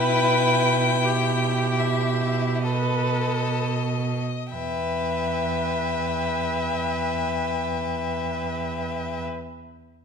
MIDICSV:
0, 0, Header, 1, 5, 480
1, 0, Start_track
1, 0, Key_signature, 1, "minor"
1, 0, Tempo, 1463415
1, 337, Tempo, 1617251
1, 817, Tempo, 1898734
1, 1297, Time_signature, 3, 2, 24, 8
1, 1297, Tempo, 1754386
1, 2803, End_track
2, 0, Start_track
2, 0, Title_t, "Violin"
2, 0, Program_c, 0, 40
2, 0, Note_on_c, 0, 79, 85
2, 563, Note_on_c, 0, 76, 64
2, 568, Note_off_c, 0, 79, 0
2, 813, Note_off_c, 0, 76, 0
2, 814, Note_on_c, 0, 75, 56
2, 1286, Note_off_c, 0, 75, 0
2, 1291, Note_on_c, 0, 79, 56
2, 2574, Note_off_c, 0, 79, 0
2, 2803, End_track
3, 0, Start_track
3, 0, Title_t, "Viola"
3, 0, Program_c, 1, 41
3, 0, Note_on_c, 1, 71, 65
3, 341, Note_on_c, 1, 67, 50
3, 346, Note_off_c, 1, 71, 0
3, 818, Note_on_c, 1, 71, 47
3, 822, Note_off_c, 1, 67, 0
3, 1060, Note_off_c, 1, 71, 0
3, 1300, Note_on_c, 1, 71, 43
3, 2583, Note_off_c, 1, 71, 0
3, 2803, End_track
4, 0, Start_track
4, 0, Title_t, "Violin"
4, 0, Program_c, 2, 40
4, 0, Note_on_c, 2, 64, 60
4, 806, Note_off_c, 2, 64, 0
4, 819, Note_on_c, 2, 69, 49
4, 1207, Note_off_c, 2, 69, 0
4, 1295, Note_on_c, 2, 76, 41
4, 2577, Note_off_c, 2, 76, 0
4, 2803, End_track
5, 0, Start_track
5, 0, Title_t, "Cello"
5, 0, Program_c, 3, 42
5, 0, Note_on_c, 3, 47, 55
5, 1208, Note_off_c, 3, 47, 0
5, 1295, Note_on_c, 3, 40, 43
5, 2578, Note_off_c, 3, 40, 0
5, 2803, End_track
0, 0, End_of_file